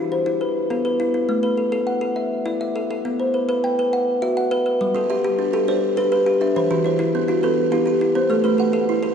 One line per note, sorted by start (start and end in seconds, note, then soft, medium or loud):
0.00 0.25 E4 medium
0.00 0.12 F#4 medium
0.12 0.56 C5 medium
0.26 0.56 E4 medium
0.41 0.84 B4 medium
0.70 1.00 B3 medium
0.70 1.15 A4 medium
0.85 1.29 B4 medium
1.00 1.13 E4 medium
1.14 1.44 E4 medium
1.29 1.58 A3 medium
1.43 1.87 B4 medium
1.57 1.71 A4 medium
1.72 2.00 A4 medium
1.87 2.31 F#5 medium
2.01 2.31 A4 medium
2.16 2.60 E5 medium
2.46 2.75 E4 medium
2.46 2.90 D5 medium
2.61 3.05 E5 medium
2.76 2.89 A4 medium
2.91 3.20 A4 medium
3.05 3.34 B3 medium
3.20 3.63 C5 medium
3.34 3.48 B4 medium
3.49 3.78 B4 medium
3.64 4.07 G5 medium
3.79 4.08 B4 medium
3.93 4.36 F#5 medium
4.22 4.51 F#4 medium
4.22 4.66 E5 medium
4.37 4.80 F#5 medium
4.51 4.65 B4 medium
4.66 4.95 B4 medium
4.81 5.10 G3 medium
4.95 5.24 G3 medium
4.95 5.39 A4 medium
5.10 5.23 G4 medium
5.10 5.53 E5 medium
5.24 5.52 G4 medium
5.39 5.67 D4 medium
5.53 5.82 G4 medium
5.53 5.97 A4 medium
5.68 5.97 D4 medium
5.68 6.12 C5 medium
5.68 6.12 D5 medium
5.97 6.26 D4 medium
5.97 6.41 G4 medium
5.97 6.11 B4 medium
6.12 6.41 B4 medium
6.12 6.55 B4 medium
6.26 6.55 G4 medium
6.41 6.70 D4 medium
6.41 6.70 E5 medium
6.56 6.85 E3 medium
6.56 6.85 C5 medium
6.71 6.99 E3 medium
6.71 7.14 F#4 medium
6.84 6.98 E4 medium
6.84 7.29 C5 medium
6.99 7.27 E4 medium
7.15 7.43 B3 medium
7.28 7.57 E4 medium
7.28 7.72 F#4 medium
7.43 7.72 B3 medium
7.43 7.87 A4 medium
7.43 7.86 B4 medium
7.72 8.01 B3 medium
7.72 8.16 E4 medium
7.72 7.85 G4 medium
7.86 8.30 G4 medium
7.86 8.16 G4 medium
8.01 8.30 E4 medium
8.15 8.44 B3 medium
8.15 8.44 C5 medium
8.30 8.59 A3 medium
8.30 8.59 A4 medium
8.44 8.74 A3 medium
8.44 8.88 B4 medium
8.58 8.72 A4 medium
8.58 9.03 F#5 medium
8.73 9.01 A4 medium
8.89 9.14 E4 medium
9.03 9.14 A4 medium
9.03 9.14 B4 medium